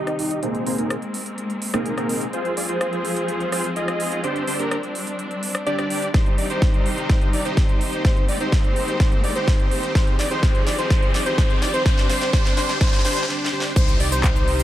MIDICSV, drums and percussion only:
0, 0, Header, 1, 2, 480
1, 0, Start_track
1, 0, Key_signature, -3, "minor"
1, 0, Tempo, 476190
1, 431, Time_signature, 4, 2, 24, 8
1, 14748, End_track
2, 0, Start_track
2, 0, Title_t, "Drums"
2, 71, Note_on_c, 9, 37, 58
2, 71, Note_on_c, 9, 42, 26
2, 172, Note_off_c, 9, 37, 0
2, 172, Note_off_c, 9, 42, 0
2, 191, Note_on_c, 9, 46, 95
2, 292, Note_off_c, 9, 46, 0
2, 311, Note_on_c, 9, 42, 53
2, 412, Note_off_c, 9, 42, 0
2, 430, Note_on_c, 9, 42, 50
2, 531, Note_off_c, 9, 42, 0
2, 551, Note_on_c, 9, 42, 24
2, 652, Note_off_c, 9, 42, 0
2, 671, Note_on_c, 9, 46, 101
2, 772, Note_off_c, 9, 46, 0
2, 791, Note_on_c, 9, 42, 49
2, 892, Note_off_c, 9, 42, 0
2, 911, Note_on_c, 9, 37, 73
2, 911, Note_on_c, 9, 42, 49
2, 1012, Note_off_c, 9, 37, 0
2, 1012, Note_off_c, 9, 42, 0
2, 1031, Note_on_c, 9, 42, 25
2, 1132, Note_off_c, 9, 42, 0
2, 1150, Note_on_c, 9, 46, 90
2, 1251, Note_off_c, 9, 46, 0
2, 1270, Note_on_c, 9, 42, 51
2, 1371, Note_off_c, 9, 42, 0
2, 1391, Note_on_c, 9, 42, 48
2, 1491, Note_off_c, 9, 42, 0
2, 1511, Note_on_c, 9, 42, 27
2, 1611, Note_off_c, 9, 42, 0
2, 1630, Note_on_c, 9, 46, 102
2, 1731, Note_off_c, 9, 46, 0
2, 1751, Note_on_c, 9, 37, 75
2, 1751, Note_on_c, 9, 42, 50
2, 1852, Note_off_c, 9, 37, 0
2, 1852, Note_off_c, 9, 42, 0
2, 1871, Note_on_c, 9, 42, 53
2, 1972, Note_off_c, 9, 42, 0
2, 1991, Note_on_c, 9, 37, 63
2, 1991, Note_on_c, 9, 42, 27
2, 2092, Note_off_c, 9, 37, 0
2, 2092, Note_off_c, 9, 42, 0
2, 2111, Note_on_c, 9, 46, 92
2, 2211, Note_off_c, 9, 46, 0
2, 2231, Note_on_c, 9, 42, 51
2, 2332, Note_off_c, 9, 42, 0
2, 2351, Note_on_c, 9, 42, 49
2, 2452, Note_off_c, 9, 42, 0
2, 2471, Note_on_c, 9, 42, 23
2, 2572, Note_off_c, 9, 42, 0
2, 2591, Note_on_c, 9, 46, 113
2, 2692, Note_off_c, 9, 46, 0
2, 2711, Note_on_c, 9, 42, 48
2, 2812, Note_off_c, 9, 42, 0
2, 2831, Note_on_c, 9, 37, 77
2, 2831, Note_on_c, 9, 42, 47
2, 2932, Note_off_c, 9, 37, 0
2, 2932, Note_off_c, 9, 42, 0
2, 2951, Note_on_c, 9, 42, 24
2, 3052, Note_off_c, 9, 42, 0
2, 3071, Note_on_c, 9, 46, 88
2, 3172, Note_off_c, 9, 46, 0
2, 3191, Note_on_c, 9, 42, 53
2, 3292, Note_off_c, 9, 42, 0
2, 3311, Note_on_c, 9, 42, 49
2, 3412, Note_off_c, 9, 42, 0
2, 3432, Note_on_c, 9, 42, 25
2, 3533, Note_off_c, 9, 42, 0
2, 3552, Note_on_c, 9, 37, 63
2, 3552, Note_on_c, 9, 46, 107
2, 3652, Note_off_c, 9, 37, 0
2, 3652, Note_off_c, 9, 46, 0
2, 3671, Note_on_c, 9, 42, 51
2, 3772, Note_off_c, 9, 42, 0
2, 3792, Note_on_c, 9, 42, 50
2, 3893, Note_off_c, 9, 42, 0
2, 3912, Note_on_c, 9, 37, 68
2, 3912, Note_on_c, 9, 42, 25
2, 4012, Note_off_c, 9, 37, 0
2, 4012, Note_off_c, 9, 42, 0
2, 4032, Note_on_c, 9, 46, 101
2, 4133, Note_off_c, 9, 46, 0
2, 4151, Note_on_c, 9, 42, 50
2, 4252, Note_off_c, 9, 42, 0
2, 4271, Note_on_c, 9, 42, 50
2, 4372, Note_off_c, 9, 42, 0
2, 4392, Note_on_c, 9, 42, 23
2, 4493, Note_off_c, 9, 42, 0
2, 4511, Note_on_c, 9, 46, 106
2, 4612, Note_off_c, 9, 46, 0
2, 4632, Note_on_c, 9, 42, 49
2, 4733, Note_off_c, 9, 42, 0
2, 4752, Note_on_c, 9, 37, 75
2, 4752, Note_on_c, 9, 42, 46
2, 4852, Note_off_c, 9, 37, 0
2, 4852, Note_off_c, 9, 42, 0
2, 4872, Note_on_c, 9, 42, 24
2, 4972, Note_off_c, 9, 42, 0
2, 4991, Note_on_c, 9, 46, 90
2, 5092, Note_off_c, 9, 46, 0
2, 5112, Note_on_c, 9, 42, 50
2, 5212, Note_off_c, 9, 42, 0
2, 5231, Note_on_c, 9, 42, 47
2, 5332, Note_off_c, 9, 42, 0
2, 5351, Note_on_c, 9, 42, 25
2, 5452, Note_off_c, 9, 42, 0
2, 5471, Note_on_c, 9, 46, 106
2, 5572, Note_off_c, 9, 46, 0
2, 5591, Note_on_c, 9, 37, 84
2, 5591, Note_on_c, 9, 42, 49
2, 5692, Note_off_c, 9, 37, 0
2, 5692, Note_off_c, 9, 42, 0
2, 5711, Note_on_c, 9, 42, 48
2, 5812, Note_off_c, 9, 42, 0
2, 5831, Note_on_c, 9, 37, 68
2, 5831, Note_on_c, 9, 42, 24
2, 5932, Note_off_c, 9, 37, 0
2, 5932, Note_off_c, 9, 42, 0
2, 5951, Note_on_c, 9, 46, 96
2, 6052, Note_off_c, 9, 46, 0
2, 6072, Note_on_c, 9, 42, 48
2, 6173, Note_off_c, 9, 42, 0
2, 6192, Note_on_c, 9, 36, 111
2, 6192, Note_on_c, 9, 38, 49
2, 6192, Note_on_c, 9, 42, 49
2, 6293, Note_off_c, 9, 36, 0
2, 6293, Note_off_c, 9, 38, 0
2, 6293, Note_off_c, 9, 42, 0
2, 6312, Note_on_c, 9, 42, 24
2, 6413, Note_off_c, 9, 42, 0
2, 6432, Note_on_c, 9, 46, 102
2, 6533, Note_off_c, 9, 46, 0
2, 6552, Note_on_c, 9, 42, 48
2, 6653, Note_off_c, 9, 42, 0
2, 6672, Note_on_c, 9, 36, 112
2, 6672, Note_on_c, 9, 38, 49
2, 6672, Note_on_c, 9, 42, 48
2, 6772, Note_off_c, 9, 36, 0
2, 6773, Note_off_c, 9, 38, 0
2, 6773, Note_off_c, 9, 42, 0
2, 6792, Note_on_c, 9, 42, 24
2, 6893, Note_off_c, 9, 42, 0
2, 6912, Note_on_c, 9, 46, 84
2, 7013, Note_off_c, 9, 46, 0
2, 7033, Note_on_c, 9, 42, 51
2, 7133, Note_off_c, 9, 42, 0
2, 7152, Note_on_c, 9, 36, 113
2, 7152, Note_on_c, 9, 38, 51
2, 7152, Note_on_c, 9, 42, 51
2, 7253, Note_off_c, 9, 36, 0
2, 7253, Note_off_c, 9, 38, 0
2, 7253, Note_off_c, 9, 42, 0
2, 7272, Note_on_c, 9, 42, 25
2, 7373, Note_off_c, 9, 42, 0
2, 7392, Note_on_c, 9, 46, 108
2, 7493, Note_off_c, 9, 46, 0
2, 7512, Note_on_c, 9, 42, 49
2, 7613, Note_off_c, 9, 42, 0
2, 7632, Note_on_c, 9, 36, 115
2, 7632, Note_on_c, 9, 38, 55
2, 7632, Note_on_c, 9, 42, 52
2, 7733, Note_off_c, 9, 36, 0
2, 7733, Note_off_c, 9, 38, 0
2, 7733, Note_off_c, 9, 42, 0
2, 7752, Note_on_c, 9, 42, 26
2, 7853, Note_off_c, 9, 42, 0
2, 7872, Note_on_c, 9, 46, 100
2, 7973, Note_off_c, 9, 46, 0
2, 7992, Note_on_c, 9, 42, 49
2, 8093, Note_off_c, 9, 42, 0
2, 8112, Note_on_c, 9, 36, 115
2, 8112, Note_on_c, 9, 38, 59
2, 8112, Note_on_c, 9, 42, 51
2, 8212, Note_off_c, 9, 36, 0
2, 8213, Note_off_c, 9, 38, 0
2, 8213, Note_off_c, 9, 42, 0
2, 8232, Note_on_c, 9, 42, 24
2, 8333, Note_off_c, 9, 42, 0
2, 8352, Note_on_c, 9, 46, 107
2, 8453, Note_off_c, 9, 46, 0
2, 8471, Note_on_c, 9, 42, 47
2, 8572, Note_off_c, 9, 42, 0
2, 8592, Note_on_c, 9, 36, 105
2, 8592, Note_on_c, 9, 38, 62
2, 8592, Note_on_c, 9, 42, 50
2, 8692, Note_off_c, 9, 38, 0
2, 8692, Note_off_c, 9, 42, 0
2, 8693, Note_off_c, 9, 36, 0
2, 8711, Note_on_c, 9, 42, 26
2, 8812, Note_off_c, 9, 42, 0
2, 8831, Note_on_c, 9, 46, 87
2, 8932, Note_off_c, 9, 46, 0
2, 8951, Note_on_c, 9, 42, 55
2, 9052, Note_off_c, 9, 42, 0
2, 9072, Note_on_c, 9, 36, 108
2, 9072, Note_on_c, 9, 38, 62
2, 9072, Note_on_c, 9, 42, 52
2, 9172, Note_off_c, 9, 38, 0
2, 9172, Note_off_c, 9, 42, 0
2, 9173, Note_off_c, 9, 36, 0
2, 9191, Note_on_c, 9, 42, 28
2, 9292, Note_off_c, 9, 42, 0
2, 9311, Note_on_c, 9, 46, 98
2, 9412, Note_off_c, 9, 46, 0
2, 9431, Note_on_c, 9, 42, 52
2, 9532, Note_off_c, 9, 42, 0
2, 9552, Note_on_c, 9, 36, 113
2, 9552, Note_on_c, 9, 38, 72
2, 9552, Note_on_c, 9, 42, 51
2, 9652, Note_off_c, 9, 38, 0
2, 9652, Note_off_c, 9, 42, 0
2, 9653, Note_off_c, 9, 36, 0
2, 9672, Note_on_c, 9, 42, 25
2, 9772, Note_off_c, 9, 42, 0
2, 9792, Note_on_c, 9, 46, 97
2, 9893, Note_off_c, 9, 46, 0
2, 9912, Note_on_c, 9, 42, 53
2, 10013, Note_off_c, 9, 42, 0
2, 10032, Note_on_c, 9, 36, 109
2, 10032, Note_on_c, 9, 38, 78
2, 10032, Note_on_c, 9, 42, 54
2, 10133, Note_off_c, 9, 36, 0
2, 10133, Note_off_c, 9, 38, 0
2, 10133, Note_off_c, 9, 42, 0
2, 10152, Note_on_c, 9, 42, 26
2, 10253, Note_off_c, 9, 42, 0
2, 10271, Note_on_c, 9, 38, 81
2, 10271, Note_on_c, 9, 46, 102
2, 10372, Note_off_c, 9, 38, 0
2, 10372, Note_off_c, 9, 46, 0
2, 10392, Note_on_c, 9, 42, 52
2, 10493, Note_off_c, 9, 42, 0
2, 10512, Note_on_c, 9, 36, 110
2, 10512, Note_on_c, 9, 38, 76
2, 10512, Note_on_c, 9, 42, 53
2, 10612, Note_off_c, 9, 36, 0
2, 10613, Note_off_c, 9, 38, 0
2, 10613, Note_off_c, 9, 42, 0
2, 10632, Note_on_c, 9, 42, 25
2, 10733, Note_off_c, 9, 42, 0
2, 10752, Note_on_c, 9, 38, 77
2, 10752, Note_on_c, 9, 46, 86
2, 10853, Note_off_c, 9, 38, 0
2, 10853, Note_off_c, 9, 46, 0
2, 10873, Note_on_c, 9, 42, 59
2, 10973, Note_off_c, 9, 42, 0
2, 10992, Note_on_c, 9, 36, 111
2, 10992, Note_on_c, 9, 38, 80
2, 10992, Note_on_c, 9, 42, 54
2, 11093, Note_off_c, 9, 36, 0
2, 11093, Note_off_c, 9, 38, 0
2, 11093, Note_off_c, 9, 42, 0
2, 11112, Note_on_c, 9, 42, 28
2, 11213, Note_off_c, 9, 42, 0
2, 11232, Note_on_c, 9, 38, 84
2, 11232, Note_on_c, 9, 46, 96
2, 11333, Note_off_c, 9, 38, 0
2, 11333, Note_off_c, 9, 46, 0
2, 11352, Note_on_c, 9, 42, 54
2, 11453, Note_off_c, 9, 42, 0
2, 11472, Note_on_c, 9, 36, 108
2, 11472, Note_on_c, 9, 38, 87
2, 11472, Note_on_c, 9, 42, 55
2, 11572, Note_off_c, 9, 36, 0
2, 11573, Note_off_c, 9, 38, 0
2, 11573, Note_off_c, 9, 42, 0
2, 11592, Note_on_c, 9, 42, 28
2, 11693, Note_off_c, 9, 42, 0
2, 11712, Note_on_c, 9, 38, 98
2, 11712, Note_on_c, 9, 46, 90
2, 11813, Note_off_c, 9, 38, 0
2, 11813, Note_off_c, 9, 46, 0
2, 11833, Note_on_c, 9, 42, 56
2, 11933, Note_off_c, 9, 42, 0
2, 11952, Note_on_c, 9, 36, 114
2, 11952, Note_on_c, 9, 38, 96
2, 11952, Note_on_c, 9, 42, 59
2, 12052, Note_off_c, 9, 36, 0
2, 12053, Note_off_c, 9, 38, 0
2, 12053, Note_off_c, 9, 42, 0
2, 12072, Note_on_c, 9, 38, 83
2, 12072, Note_on_c, 9, 42, 27
2, 12173, Note_off_c, 9, 38, 0
2, 12173, Note_off_c, 9, 42, 0
2, 12192, Note_on_c, 9, 38, 93
2, 12192, Note_on_c, 9, 46, 105
2, 12292, Note_off_c, 9, 38, 0
2, 12292, Note_off_c, 9, 46, 0
2, 12312, Note_on_c, 9, 38, 82
2, 12312, Note_on_c, 9, 42, 56
2, 12412, Note_off_c, 9, 38, 0
2, 12412, Note_off_c, 9, 42, 0
2, 12431, Note_on_c, 9, 38, 100
2, 12431, Note_on_c, 9, 42, 58
2, 12432, Note_on_c, 9, 36, 113
2, 12532, Note_off_c, 9, 36, 0
2, 12532, Note_off_c, 9, 38, 0
2, 12532, Note_off_c, 9, 42, 0
2, 12552, Note_on_c, 9, 38, 82
2, 12552, Note_on_c, 9, 42, 28
2, 12652, Note_off_c, 9, 38, 0
2, 12652, Note_off_c, 9, 42, 0
2, 12671, Note_on_c, 9, 38, 96
2, 12671, Note_on_c, 9, 46, 86
2, 12772, Note_off_c, 9, 38, 0
2, 12772, Note_off_c, 9, 46, 0
2, 12791, Note_on_c, 9, 38, 91
2, 12791, Note_on_c, 9, 42, 58
2, 12892, Note_off_c, 9, 38, 0
2, 12892, Note_off_c, 9, 42, 0
2, 12911, Note_on_c, 9, 38, 100
2, 12911, Note_on_c, 9, 42, 53
2, 12912, Note_on_c, 9, 36, 114
2, 12971, Note_off_c, 9, 38, 0
2, 12971, Note_on_c, 9, 38, 87
2, 13012, Note_off_c, 9, 36, 0
2, 13012, Note_off_c, 9, 42, 0
2, 13032, Note_off_c, 9, 38, 0
2, 13032, Note_on_c, 9, 38, 94
2, 13032, Note_on_c, 9, 42, 30
2, 13092, Note_off_c, 9, 38, 0
2, 13092, Note_on_c, 9, 38, 92
2, 13133, Note_off_c, 9, 42, 0
2, 13151, Note_off_c, 9, 38, 0
2, 13151, Note_on_c, 9, 38, 105
2, 13151, Note_on_c, 9, 46, 109
2, 13212, Note_off_c, 9, 38, 0
2, 13212, Note_on_c, 9, 38, 89
2, 13252, Note_off_c, 9, 46, 0
2, 13272, Note_off_c, 9, 38, 0
2, 13272, Note_on_c, 9, 38, 92
2, 13272, Note_on_c, 9, 42, 56
2, 13332, Note_off_c, 9, 38, 0
2, 13332, Note_on_c, 9, 38, 99
2, 13373, Note_off_c, 9, 42, 0
2, 13392, Note_off_c, 9, 38, 0
2, 13392, Note_on_c, 9, 38, 69
2, 13493, Note_off_c, 9, 38, 0
2, 13552, Note_on_c, 9, 38, 85
2, 13653, Note_off_c, 9, 38, 0
2, 13712, Note_on_c, 9, 38, 104
2, 13813, Note_off_c, 9, 38, 0
2, 13872, Note_on_c, 9, 36, 124
2, 13872, Note_on_c, 9, 42, 84
2, 13872, Note_on_c, 9, 49, 102
2, 13872, Note_on_c, 9, 82, 58
2, 13973, Note_off_c, 9, 36, 0
2, 13973, Note_off_c, 9, 42, 0
2, 13973, Note_off_c, 9, 49, 0
2, 13973, Note_off_c, 9, 82, 0
2, 13993, Note_on_c, 9, 42, 37
2, 13993, Note_on_c, 9, 82, 33
2, 14094, Note_off_c, 9, 42, 0
2, 14094, Note_off_c, 9, 82, 0
2, 14113, Note_on_c, 9, 46, 107
2, 14213, Note_off_c, 9, 46, 0
2, 14233, Note_on_c, 9, 42, 54
2, 14233, Note_on_c, 9, 82, 62
2, 14334, Note_off_c, 9, 42, 0
2, 14334, Note_off_c, 9, 82, 0
2, 14352, Note_on_c, 9, 36, 118
2, 14352, Note_on_c, 9, 39, 121
2, 14353, Note_on_c, 9, 37, 73
2, 14353, Note_on_c, 9, 42, 82
2, 14353, Note_on_c, 9, 82, 56
2, 14453, Note_off_c, 9, 36, 0
2, 14453, Note_off_c, 9, 37, 0
2, 14453, Note_off_c, 9, 39, 0
2, 14453, Note_off_c, 9, 42, 0
2, 14454, Note_off_c, 9, 82, 0
2, 14473, Note_on_c, 9, 82, 32
2, 14573, Note_off_c, 9, 82, 0
2, 14593, Note_on_c, 9, 46, 90
2, 14693, Note_off_c, 9, 46, 0
2, 14712, Note_on_c, 9, 42, 57
2, 14712, Note_on_c, 9, 82, 73
2, 14748, Note_off_c, 9, 42, 0
2, 14748, Note_off_c, 9, 82, 0
2, 14748, End_track
0, 0, End_of_file